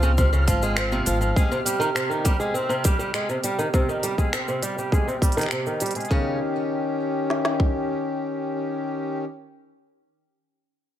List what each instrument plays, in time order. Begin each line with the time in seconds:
Already playing: upright bass C#2, harmonium C4 F4, synth texture F6
0.03 twelve-string acoustic guitar C#3, shaker
0.18 twelve-string acoustic guitar C3, kick, shaker
0.33 twelve-string acoustic guitar C#3, shaker
0.47 upright bass G#1, twelve-string acoustic guitar F3, kick, open hi-hat, shaker
0.62 twelve-string acoustic guitar G#3, shaker
0.77 twelve-string acoustic guitar C4, finger snap, shaker
0.92 twelve-string acoustic guitar C3, shaker
1.06 upright bass G#1, twelve-string acoustic guitar F3, open hi-hat, shaker
1.21 twelve-string acoustic guitar F3, shaker
1.35 harmonium C3 G4, twelve-string acoustic guitar G#3, kick, shaker
1.51 twelve-string acoustic guitar C3, shaker
1.66 twelve-string acoustic guitar G3, open hi-hat, shaker
1.80 twelve-string acoustic guitar D#3, shaker
1.95 twelve-string acoustic guitar C3, finger snap, shaker
2.10 twelve-string acoustic guitar D#3, shaker
2.25 twelve-string acoustic guitar G3, kick, open hi-hat, shaker
2.40 twelve-string acoustic guitar G#3, shaker
2.54 twelve-string acoustic guitar C4, shaker
2.69 twelve-string acoustic guitar C3, shaker
2.84 twelve-string acoustic guitar G3, kick, open hi-hat, shaker
2.99 twelve-string acoustic guitar G3, shaker
3.14 twelve-string acoustic guitar G#3, finger snap, shaker
3.29 twelve-string acoustic guitar C3, shaker
3.44 twelve-string acoustic guitar G3, open hi-hat, shaker
3.59 twelve-string acoustic guitar D#3, shaker
3.74 twelve-string acoustic guitar C3, kick, shaker
3.89 twelve-string acoustic guitar D#3, shaker
4.03 twelve-string acoustic guitar G3, open hi-hat, shaker
4.18 twelve-string acoustic guitar G#3, kick, shaker
4.33 twelve-string acoustic guitar C4, finger snap, shaker
4.48 twelve-string acoustic guitar C3, shaker
4.63 twelve-string acoustic guitar G3, open hi-hat, shaker
4.78 twelve-string acoustic guitar G3, shaker
4.92 twelve-string acoustic guitar G#3, kick, shaker
5.08 twelve-string acoustic guitar C3, shaker
5.22 twelve-string acoustic guitar G3, kick, open hi-hat, shaker
5.32 open hi-hat
5.37 twelve-string acoustic guitar D#3, finger snap, shaker
5.39 finger snap
5.41 finger snap, open hi-hat
5.43 finger snap
5.46 finger snap
5.49 finger snap
5.51 twelve-string acoustic guitar C3, finger snap, shaker
5.66 twelve-string acoustic guitar D#3, shaker
5.80 twelve-string acoustic guitar G3, open hi-hat, shaker
5.86 open hi-hat
5.91 open hi-hat
5.95 twelve-string acoustic guitar G#3, open hi-hat
6.01 open hi-hat
6.05 open hi-hat
6.11 twelve-string acoustic guitar C#3, harmonium D#3 C#4 G4, kick
7.30 snare
7.45 snare
7.60 kick